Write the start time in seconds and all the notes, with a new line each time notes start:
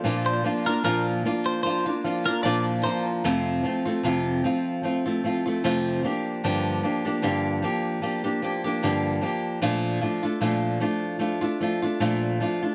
0.03 A#2 F3 A#3 D4 F4 D5
0.26 C5
0.44 F3 A#3 D4 F4
0.66 A#3 D4 F4 A#4
0.84 A#2 F3 A#3 D4 F4 A#4
1.24 F3 A#3 D4 F4
1.46 C5
1.63 F3 A#3 D4 F4 C5
1.86 A#3 D4 F4
2.04 F3 A#3 D4 F4 F5
2.26 A#3 D4 F4 A#4
2.43 A#2 F3 A#3 D4 F4 D5 A5
2.84 F3 A#3 D4 F4 C5 A#5
3.24 F2 C3 F3 A3 C4 F4
3.63 F3 A3 C4 F4
3.85 F3 A3 C4 F4
4.03 F2 C3 F3 A3 C4 F4
4.44 F3 A3 C4 F4
4.83 F3 A3 C4 F4
5.06 F3 A3 C4 F4
5.24 F3 A3 C4 F4
5.46 F3 A3 C4 F4
5.64 F2 C3 F3 A3 C4 F4
6.03 F3 A#3 D4 G4
6.43 G2 D3 F3 A#3 D4 G4
6.83 F3 A#3 D4 G4
7.05 F3 A#3 D4 G4
7.22 G2 D3 F3 A#3 D4 G4
7.62 F3 A#3 D4 G4
8.02 F3 A#3 D4 G4
8.24 F3 A#3 D4 G4
8.42 F3 A#3 D4 G4
8.64 F3 A#3 D4 G4
8.83 G2 D3 F3 A#3 D4 G4
9.21 F3 A#3 D4 G4
9.61 A#2 F3 A3 D4 F4
10.01 F3 A3 D4 F4
10.23 A3 D4 F4
10.41 A#2 F3 A3 D4 F4
10.80 F3 A3 D4 F4
11.19 F3 A3 D4 F4
11.41 A3 D4 F4
11.60 F3 A3 D4 F4
11.82 A3 D4 F4
12.00 A#2 F3 A3 D4 F4
12.40 F3 A3 D4 F4
12.63 A3 D4 F4